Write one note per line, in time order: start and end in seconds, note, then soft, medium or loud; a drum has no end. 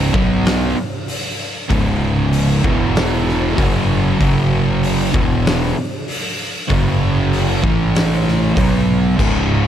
0.00 0.12 C#2 loud
0.00 0.12 G#2 loud
0.00 0.13 C#3 loud
0.13 0.72 B1 loud
0.13 0.75 B2 medium
0.13 0.75 F#3 medium
0.13 0.75 B3 medium
0.13 kick loud
0.45 snare loud
0.45 open hi-hat medium
1.08 open hi-hat medium
1.70 2.59 C#1 loud
1.70 2.62 C#2 loud
1.70 2.63 G#2 loud
1.70 2.63 C#3 loud
1.70 kick loud
1.70 open hi-hat medium
2.33 open hi-hat medium
2.63 3.53 E1 medium
2.63 3.56 E2 medium
2.63 3.56 B2 medium
2.63 3.57 E3 loud
2.63 kick loud
2.96 snare loud
2.96 open hi-hat medium
3.29 snare soft
3.57 4.16 F#1 loud
3.57 4.18 F#2 loud
3.57 4.19 C#3 loud
3.57 4.19 F#3 loud
3.57 kick loud
3.57 open hi-hat medium
4.20 5.09 F#1 medium
4.20 5.12 F#2 loud
4.20 5.13 C#3 loud
4.20 5.13 F#3 loud
4.20 kick loud
4.20 open hi-hat medium
4.83 open hi-hat medium
5.12 5.72 E1 medium
5.12 5.74 E2 medium
5.12 5.74 B2 medium
5.12 5.75 E3 loud
5.12 kick loud
5.46 snare loud
5.46 open hi-hat medium
6.08 open hi-hat medium
6.70 7.59 F#1 loud
6.70 7.62 F#2 loud
6.70 7.62 C#3 loud
6.70 7.62 F#3 loud
6.70 kick loud
6.70 open hi-hat medium
7.33 open hi-hat medium
7.63 8.52 A1 medium
7.63 8.55 A2 medium
7.63 8.56 E3 loud
7.63 8.56 A3 medium
7.63 kick loud
7.95 snare loud
7.95 open hi-hat medium
8.28 snare soft
8.56 9.15 B1 loud
8.56 9.17 B2 loud
8.56 9.18 F#3 loud
8.56 9.18 B3 loud
8.56 kick loud
8.56 open hi-hat medium
9.18 9.67 C#1 medium
9.18 9.67 C#2 loud
9.18 9.67 G#2 loud
9.18 9.67 C#3 loud
9.18 kick loud
9.18 crash loud